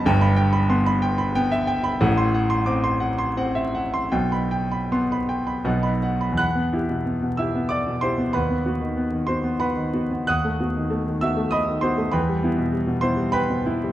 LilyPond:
<<
  \new Staff \with { instrumentName = "Grand piano" } { \time 3/4 \key e \minor \tempo 4 = 92 g''16 b''16 g''16 b''16 c'''16 b''16 g''16 b''16 g''16 e''16 g''16 b''16 | fis''16 c'''16 fis''16 c'''16 d'''16 c'''16 fis''16 c'''16 fis''16 e''16 fis''16 c'''16 | g''16 b''16 g''16 b''16 c'''16 b''16 g''16 b''16 fis''16 b''16 fis''16 b''16 | <fis'' b'' fis'''>4. <e'' e'''>8 <d'' d'''>8 <c'' c'''>8 |
<b' fis'' b''>4. <c'' c'''>8 <b' fis'' b''>4 | <fis'' dis''' fis'''>4. <e'' e'''>8 <dis'' b'' dis'''>8 <c'' c'''>8 | <b' g'' b''>4. <c'' c'''>8 <b' g'' b''>4 | }
  \new Staff \with { instrumentName = "Grand piano" } { \time 3/4 \key e \minor <g,, g,>4 b4 b4 | <a,, a,>4 c'4 c'4 | <b,, b,>4 b4 <b,, b, b dis'>4 | e,16 b16 <e' g'>16 b,16 b16 b,16 <e' g'>16 b8 b,16 <e' g'>16 b16 |
dis,16 b16 <b fis'>16 dis16 b16 dis16 <b fis'>16 b8 dis16 <b fis'>16 b16 | dis,16 a16 <b fis'>16 dis16 a16 dis16 <b fis'>16 a8 dis16 <b fis'>16 a16 | e,16 g16 <b e'>16 b,16 g16 b,16 <b e'>16 g8 b,16 <b e'>16 g16 | }
>>